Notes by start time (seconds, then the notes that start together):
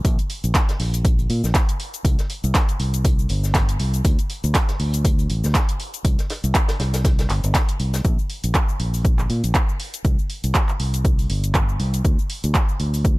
0.04 A#1, kick, closed hi-hat, cabasa
0.19 closed hi-hat, cabasa
0.30 closed hi-hat, open hi-hat
0.44 A#1, closed hi-hat, cabasa
0.55 kick, snare, clap, closed hi-hat, cabasa
0.69 snare, closed hi-hat, cabasa
0.80 A#1, snare, open hi-hat
0.94 closed hi-hat, cabasa
1.05 kick, closed hi-hat, cabasa
1.19 closed hi-hat, cabasa
1.30 A#2, closed hi-hat, open hi-hat
1.44 A#1, snare, cabasa
1.54 kick, snare, clap, closed hi-hat, cabasa
1.69 closed hi-hat, cabasa
1.80 closed hi-hat, open hi-hat
1.94 closed hi-hat, cabasa
2.05 C2, kick, closed hi-hat, cabasa
2.19 snare, closed hi-hat, cabasa
2.30 closed hi-hat, open hi-hat
2.44 C2, closed hi-hat, cabasa
2.54 kick, snare, clap, closed hi-hat, cabasa
2.69 closed hi-hat, cabasa
2.80 C2, closed hi-hat, open hi-hat
2.94 closed hi-hat, cabasa
3.05 kick, closed hi-hat, cabasa
3.19 cabasa
3.29 G1, closed hi-hat, open hi-hat
3.44 snare, cabasa
3.55 kick, snare, clap, closed hi-hat, cabasa
3.69 closed hi-hat, cabasa
3.79 C2, closed hi-hat, open hi-hat
3.94 closed hi-hat, cabasa
4.05 D2, kick, closed hi-hat, cabasa
4.19 closed hi-hat, cabasa
4.30 closed hi-hat, open hi-hat
4.44 D2, closed hi-hat, cabasa
4.54 kick, snare, clap, closed hi-hat, cabasa
4.69 snare, closed hi-hat, cabasa
4.80 D2, open hi-hat
4.94 closed hi-hat, cabasa
5.05 kick, closed hi-hat, cabasa
5.19 closed hi-hat, cabasa
5.30 A1, closed hi-hat, open hi-hat
5.44 D2, snare, cabasa
5.54 kick, snare, clap, closed hi-hat, cabasa
5.69 closed hi-hat, cabasa
5.80 closed hi-hat, open hi-hat
5.94 closed hi-hat, cabasa
6.04 C2, kick, closed hi-hat, cabasa
6.18 snare, closed hi-hat, cabasa
6.30 snare, closed hi-hat, open hi-hat
6.44 C2, closed hi-hat, cabasa
6.55 kick, clap, closed hi-hat, cabasa
6.68 snare, closed hi-hat, cabasa
6.80 C2, snare, closed hi-hat, open hi-hat
6.94 snare, closed hi-hat, cabasa
7.05 kick, snare, closed hi-hat, cabasa
7.19 snare, closed hi-hat, cabasa
7.30 G1, clap, closed hi-hat, open hi-hat
7.44 G1, closed hi-hat, cabasa
7.55 kick, snare, clap, closed hi-hat, cabasa
7.69 closed hi-hat, cabasa
7.80 C2, closed hi-hat, open hi-hat
7.94 snare, closed hi-hat, cabasa
8.05 A#1, kick, closed hi-hat, cabasa
8.19 cabasa
8.30 open hi-hat
8.44 A#1, closed hi-hat, cabasa
8.55 kick, clap, closed hi-hat, cabasa
8.69 cabasa
8.80 A#1, open hi-hat
8.94 open hi-hat, cabasa
9.05 kick, closed hi-hat, cabasa
9.19 clap, cabasa
9.30 A#2, open hi-hat
9.44 A#1, closed hi-hat, cabasa
9.55 kick, clap, closed hi-hat, cabasa
9.69 cabasa
9.80 open hi-hat
9.94 closed hi-hat, cabasa
10.05 C2, kick, closed hi-hat, cabasa
10.19 cabasa
10.30 open hi-hat
10.44 C2, closed hi-hat, cabasa
10.55 kick, clap, closed hi-hat, cabasa
10.69 clap, cabasa
10.80 C2, open hi-hat
10.94 closed hi-hat, cabasa
11.05 kick, closed hi-hat, cabasa
11.19 open hi-hat, cabasa
11.30 G1, open hi-hat
11.44 closed hi-hat, cabasa
11.55 kick, clap, closed hi-hat, cabasa
11.69 cabasa
11.80 C2, open hi-hat
11.94 closed hi-hat, cabasa
12.05 D2, kick, closed hi-hat, cabasa
12.19 cabasa
12.30 open hi-hat
12.44 D2, closed hi-hat, cabasa
12.55 kick, clap, closed hi-hat, cabasa
12.69 cabasa
12.80 D2, open hi-hat
12.94 open hi-hat, cabasa
13.05 kick, closed hi-hat, cabasa